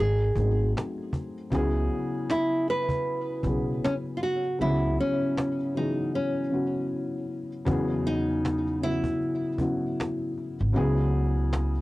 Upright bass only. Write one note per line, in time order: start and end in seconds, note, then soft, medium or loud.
0.00 0.34 G#1 medium
0.36 0.72 G#1 medium
1.52 1.87 C#2 medium
3.44 3.79 B1 medium
4.61 4.95 C#2 medium
7.67 9.02 E2 loud
10.61 10.74 G#1 medium
10.76 11.81 C#2 loud